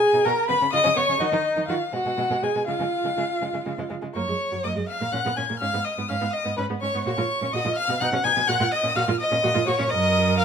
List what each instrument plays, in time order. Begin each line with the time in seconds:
Already playing: viola G#4, violin G#5
0.13 cello B2, violin D#4
0.25 cello B2, violin F#4 A#5, viola A#4
0.48 cello C#3, violin B3 B5, viola B4
0.61 cello C#3, violin C#4
0.72 cello C#3, violin F4 D#6, viola D#5
0.84 cello C#3, violin C#4
0.96 cello C#3, violin B3 C#6, viola C#5
1.09 cello C#3, violin C#4
1.20 cello D#3, viola D#4, violin F#4 D#5
1.32 cello D#3, violin D#4
1.57 cello D#3, violin D#4
1.68 cello D#3, viola F4, violin F#4 F5
1.93 cello B2, violin G#3 F#5, viola F#4
2.05 cello B2, violin G#3
2.17 cello B2, violin G#3
2.30 cello B2, violin G#3
2.42 cello B2, violin G#3 G#5, viola G#4
2.55 cello B2, violin G#3
2.67 cello C#3, violin G#3 F5, viola F4
2.80 cello C#3, violin G#3
3.04 cello C#3, violin G#3
3.17 cello C#3, violin G#3
3.41 cello C#3, violin G#3
3.54 cello C#3, violin G#3
3.66 cello C#3, violin G#3
3.78 cello C#3, violin G#3
3.90 cello C#3, violin G#3
4.02 cello C#3, violin G#3
4.15 cello F#2, viola A#3, violin C#5 C#6
4.28 cello F#2, viola G#3
4.51 cello F#2, viola F#3
4.64 cello F#2, viola A#3, violin D#5 D#6
4.75 cello F#2, viola G#3
4.88 violin F5 F6
5.01 cello A#2, viola A#3
5.12 cello A#2, viola C#4, violin F#5 F#6
5.26 cello A#2, viola B3
5.36 cello A#2, viola C#4, violin G#5 G#6
5.49 cello A#2, viola A#3
5.60 cello G#2, viola C#4, violin F5 F6
5.74 cello G#2, viola B3
5.84 violin D#5 D#6
5.98 cello G#2, viola B3
6.09 cello G#2, viola C#4, violin F5 F6
6.21 cello G#2, viola B3
6.33 violin D#5 D#6
6.45 cello G#2, viola B3
6.57 cello G#2, viola C#4, violin B4 B5
6.69 cello G#2, viola B3
6.81 cello G#2, viola C#4, violin C#5 C#6
6.94 cello G#2, viola B3
7.05 cello A#2, viola F#4, violin C#5 C#6
7.18 cello A#2, viola F4
7.42 cello A#2, viola C#4
7.53 cello A#2, viola F#4, violin D#5 D#6
7.65 cello A#2, viola F4
7.76 violin F5 F6
7.88 cello B2, viola B3
8.00 cello B2, viola D#4, violin F#5 F#6
8.12 cello B2, viola C#4
8.24 cello B2, viola D#4, violin G#5 G#6
8.36 cello B2, viola B3
8.48 cello A#2, viola F#4, violin F#5 F#6
8.60 cello A#2, viola F4
8.72 violin D#5 D#6
8.83 cello A#2, viola C#4
8.95 cello A#2, viola F#4, violin F5 F6
9.08 cello A#2, viola F4
9.20 violin D#5 D#6
9.31 cello A#2, viola C#4
9.43 cello A#2, viola F#4
9.54 cello A#2, viola F4
9.66 cello A#2, viola F#4, violin C#5 C#6
9.78 cello A#2, viola C#4
9.90 cello F#2, viola A#4, violin D#5 D#6
10.38 violin F5 F6